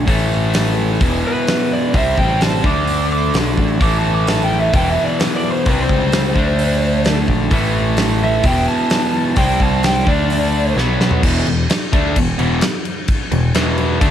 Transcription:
0.07 picked electric bass A1, overdriven electric guitar A2 E3 A3, kick, open hi-hat
0.54 snare, open hi-hat
1.00 picked electric bass E1, overdriven electric guitar E2 B2 E3, kick, open hi-hat
1.27 lead electric guitar B4
1.47 snare, open hi-hat
1.73 lead electric guitar D5
1.94 picked electric bass C2, overdriven electric guitar C3 G3 C4, lead electric guitar E5, kick, open hi-hat
2.18 picked electric bass A1, lead electric guitar G5, kick
2.41 lead electric guitar A5, snare, open hi-hat
2.63 picked electric bass D2, overdriven electric guitar D3 A3 D4, lead electric guitar D6, kick
2.87 open hi-hat
3.13 lead electric guitar D6
3.34 picked electric bass B1, snare, open hi-hat
3.57 picked electric bass A1, kick
3.80 picked electric bass A1, overdriven electric guitar A2 E3 A3, lead electric guitar D6, kick, open hi-hat
3.98 lead electric guitar A5
4.14 lead electric guitar D6
4.27 lead electric guitar A5, snare, open hi-hat
4.44 lead electric guitar G5
4.60 lead electric guitar E5
4.72 picked electric bass E1, overdriven electric guitar E2 B2 E3, lead electric guitar G5, kick, open hi-hat
4.90 lead electric guitar E5
5.04 lead electric guitar D5
5.20 lead electric guitar B4, snare, open hi-hat
5.36 lead electric guitar D5
5.52 lead electric guitar C5
5.66 picked electric bass C2, overdriven electric guitar C3 G3 C4, lead electric guitar B4, kick, open hi-hat
5.83 lead electric guitar C5
5.89 picked electric bass C#2, kick
6.12 snare, open hi-hat
6.35 picked electric bass D2, overdriven electric guitar D3 A3 D4, kick
6.59 open hi-hat
7.05 snare, open hi-hat
7.28 picked electric bass A#1, kick
7.50 picked electric bass A1, overdriven electric guitar A2 E3 A3, kick, open hi-hat
7.97 snare, open hi-hat
8.24 lead electric guitar E5
8.43 picked electric bass E1, overdriven electric guitar E2 B2 E3, lead electric guitar G5, kick, open hi-hat
8.68 lead electric guitar A5
8.90 snare, open hi-hat
9.36 picked electric bass C2, overdriven electric guitar C3 G3 C4, lead electric guitar G5, kick, open hi-hat
9.60 picked electric bass C2, lead electric guitar A5, kick
9.83 lead electric guitar G5, snare, open hi-hat
10.05 picked electric bass D2, overdriven electric guitar D3 A3 D4, lead electric guitar D5, kick
10.30 open hi-hat
10.76 picked electric bass B1, overdriven electric guitar B2 F#3 B3, snare
11.00 picked electric bass B1, snare
11.11 floor tom
11.23 picked electric bass E1, overdriven electric guitar E2 B2 E3, kick, crash
11.46 picked electric bass E1, overdriven electric guitar E2 B2, crash
11.70 muted picked electric bass stroke, muted overdriven electric guitar stroke, snare, crash
11.93 picked electric bass D2, overdriven electric guitar D3 A3 D4, kick, crash
12.16 picked electric bass E1, overdriven electric guitar E2 B2, kick, crash
12.39 picked electric bass E1, overdriven electric guitar E2 B2 E3, crash
12.61 snare, crash
12.85 crash
13.08 kick, crash
13.32 picked electric bass E1, overdriven electric guitar E2 B2, crash
13.54 picked electric bass E1, overdriven electric guitar E2 B2 E3, snare, crash
13.78 crash
14.01 picked electric bass D2, overdriven electric guitar D3 A3 D4, kick, crash

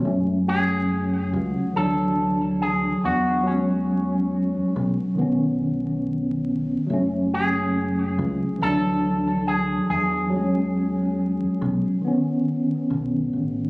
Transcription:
0.01 fingered electric bass F#1, tine electric piano F#3 A3
0.07 tine electric piano C#4
0.48 clean electric guitar G#4
1.33 fingered electric bass C#2, clean electric guitar F#4
1.72 fingered electric bass D2, tine electric piano E3 F#3, clean electric guitar A4
1.79 tine electric piano D4
2.62 clean electric guitar G#4
3.05 fingered electric bass E2, clean electric guitar F#4
3.43 tine electric piano F#3 G#3, clean electric guitar C#4
3.50 tine electric piano C#4
4.76 fingered electric bass B1
5.15 fingered electric bass B1, tine electric piano D#3 B3
5.21 tine electric piano C#4
6.87 fingered electric bass F#1, tine electric piano F#3 A3
6.93 tine electric piano C#4
7.34 clean electric guitar G#4
8.18 fingered electric bass C#2
8.58 fingered electric bass D2, tine electric piano E3 F#3
8.62 tine electric piano D4, clean electric guitar A4
9.48 clean electric guitar G#4
9.90 fingered electric bass E2, clean electric guitar G#4
10.30 tine electric piano F#3 G#3
10.36 tine electric piano C#4
11.62 fingered electric bass B1
12.02 tine electric piano D#3 B3
12.08 tine electric piano C#4
12.90 fingered electric bass B1
13.33 fingered electric bass A1

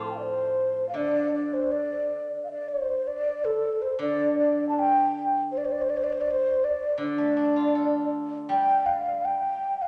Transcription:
Already playing: guzheng A2 F3 A3 C4 F4
0.01 xiao C6 D6
0.07 xiao G5 A5
0.15 xiao F5
0.19 xiao D5
0.23 xiao C5
0.89 xiao F5
0.94 guzheng D3, xiao D5
1.34 xiao D5
1.54 xiao C5
1.72 xiao D5
2.44 xiao F5
2.49 xiao D5
2.68 xiao C5
3.07 xiao D5
3.45 xiao A4
3.82 xiao C5
3.99 guzheng D3, xiao D5
4.39 xiao D5
4.69 xiao A5
4.79 xiao G5
5.52 xiao C5
5.58 xiao D5
5.65 xiao C5
5.72 xiao D5
5.82 xiao C5
5.90 xiao D5
5.97 xiao C5
6.04 xiao D5
6.13 xiao C5
6.21 xiao D5
6.31 xiao C5
6.64 xiao D5
6.98 guzheng D3
7.02 xiao D5
7.18 guzheng A3
7.37 guzheng D4
7.56 guzheng F4
7.75 guzheng A4
8.49 guzheng G3, xiao G5
8.86 xiao F5
9.25 xiao G5
9.82 xiao F5

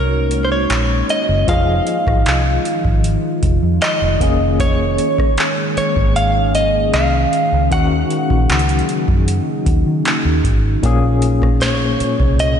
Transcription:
Already playing: fingered electric bass C2, tine electric piano G#3 F#4 A#4 C#5, ambient pad G#3 A#3 C#4 D#4 F#4, clean electric guitar A#4
0.31 closed hi-hat
0.45 clean electric guitar C5
0.52 clean electric guitar C#5
0.70 fingered electric bass A#1, clap, closed hi-hat
1.09 clean electric guitar D#5, closed hi-hat
1.29 fingered electric bass F#1
1.47 fingered electric bass F1, ambient pad D#3 F3 F4, tine electric piano F3 F4 G#4 D#5, clean electric guitar F5, kick, closed hi-hat
1.87 closed hi-hat
2.07 fingered electric bass G#1, kick, cross-stick
2.26 fingered electric bass C2, clap, closed hi-hat
2.65 closed hi-hat
2.85 fingered electric bass G#1, kick
3.04 closed hi-hat
3.43 fingered electric bass F1, kick, closed hi-hat
3.63 fingered electric bass F2
3.82 clean electric guitar D#5, clap, closed hi-hat
4.02 fingered electric bass F1
4.20 fingered electric bass F1, ambient pad G#3 A#3 C#4 G#4, tine electric piano A#3 C#4 G#4, kick, closed hi-hat
4.60 clean electric guitar C#5, kick, closed hi-hat
4.98 closed hi-hat
5.18 kick, cross-stick
5.38 clap, closed hi-hat
5.77 clean electric guitar C#5, muted fingered electric bass stroke, closed hi-hat
5.96 fingered electric bass G#1, kick
6.16 clean electric guitar F5, closed hi-hat
6.55 clean electric guitar D#5, closed hi-hat
6.94 fingered electric bass C2, clean electric guitar F5, clap, closed hi-hat
7.33 closed hi-hat
7.52 fingered electric bass C#2
7.71 fingered electric bass D#2, ambient pad C#3 F#3 D#4, tine electric piano D#3 C#4 D#4 F#4, clean electric guitar F#5, kick, closed hi-hat
8.10 closed hi-hat
8.30 fingered electric bass A#1, kick
8.50 fingered electric bass C#2, clap, closed hi-hat
8.59 closed hi-hat
8.69 closed hi-hat
8.79 closed hi-hat
8.89 closed hi-hat
9.08 fingered electric bass F#2, kick
9.28 closed hi-hat
9.66 fingered electric bass D#2, kick, closed hi-hat
9.86 fingered electric bass D#3
10.05 clap, closed hi-hat
10.25 fingered electric bass D#2
10.44 fingered electric bass G#1, kick, closed hi-hat
10.83 fingered electric bass A#1, tine electric piano A#2 A#3 C#4 G#4, ambient pad F3 G#3 A#3 C#4 F4, kick, closed hi-hat
11.22 closed hi-hat
11.42 kick, cross-stick
11.61 clean electric guitar C#5, snare, closed hi-hat
12.00 muted fingered electric bass stroke, closed hi-hat
12.20 fingered electric bass C2, kick
12.39 clean electric guitar D#5, closed hi-hat

